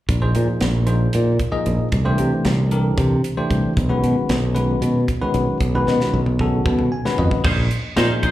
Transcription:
0.09 A#1, kick, closed hi-hat
0.22 F3 A#3 D#4 G#4 C5
0.35 A#2, closed hi-hat
0.61 A#1, snare, closed hi-hat
0.87 F3 A#3 D#4 G#4 C5, closed hi-hat
1.13 A#2, closed hi-hat
1.39 kick, closed hi-hat
1.52 F3 A#3 D#4 G#4 D#5
1.66 A#1, closed hi-hat
1.92 C2, kick, closed hi-hat
2.05 E3 A3 D4 G4 C5
2.18 C3, closed hi-hat
2.45 C2, snare, closed hi-hat
2.71 E3 D4 G4 A4 A#4, closed hi-hat
2.98 C3, kick, closed hi-hat
3.24 closed hi-hat
3.37 E3 A3 D4 G4 C5
3.51 C2, kick, closed hi-hat
3.77 B1, kick, closed hi-hat
3.89 D#3 G#3 C#4 F#4 B4
4.04 B2, closed hi-hat
4.29 B1, snare, closed hi-hat
4.54 D#3 G#3 C#4 F#4 B4, closed hi-hat
4.82 B2, closed hi-hat
5.08 kick, closed hi-hat
5.22 D#3 G#3 C#4 F#4 B4
5.34 B1, closed hi-hat
5.60 B1, kick, closed hi-hat
5.75 D#3 G#3 C#4 F#4 B4
5.87 B2, snare
6.00 snare
6.14 B1
6.26 mid tom
6.39 D#3 C#4 F#4 G#4 A4, kick
6.66 B2, kick, mid tom
6.79 mid tom
6.92 G#5
7.05 D#3 G#3 C#4 F#4 B4, snare
7.18 F2 D#5, floor tom
7.31 kick
7.44 A#1 C#4 D#4 G#4 C5, kick, crash
7.71 closed hi-hat
7.96 A#2 F3 A#3 C#4 D#4 G#4 C5, snare, closed hi-hat
8.23 A#1 D#4 G#4 C5, kick, closed hi-hat

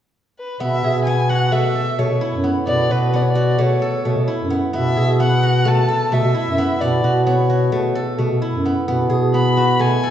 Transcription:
0.39 B4
0.60 B2 B3 E5
0.84 B2 G#4
1.05 B3 G#5
1.29 F#4 F#5
1.52 B2 A3 E5
1.75 A4
1.99 B2 A3 C#5
2.09 B2
2.21 E4
2.33 F#2
2.44 B3
2.67 B2 B3 D5
2.90 B2 F#4 B4
3.13 B3 D5
3.22 C#5
3.30 D5
3.35 F#4
3.58 B2 A3 C#5
3.82 A4
4.05 B2 A3
4.17 B2
4.28 E4
4.40 F#2
4.50 B3
4.73 B2 B3 E5
4.97 B2 G#4
5.20 B3 F#5
5.43 F#4
5.65 B2 A3 A5
5.88 A4
6.12 B2 A3 E5
6.24 B2
6.34 E4
6.47 F#2
6.58 B3
6.81 B2 B3 D5
7.03 B2 F#4
7.27 B3 C#5
7.49 F#4
7.72 B2 A3
7.95 A4
8.18 B2 A3
8.30 B2
8.42 E4
8.54 F#2
8.65 B3
8.88 B2 B3
9.10 B2 G#4
9.34 B3 B5
9.57 F#4
9.79 B2 A3 G#5
10.03 A4

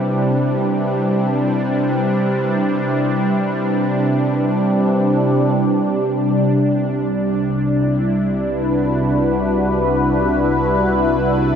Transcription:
Already playing: C3 G3 D4 E4 B4
5.55 C2
7.79 E4
8.46 B4
8.68 F#4

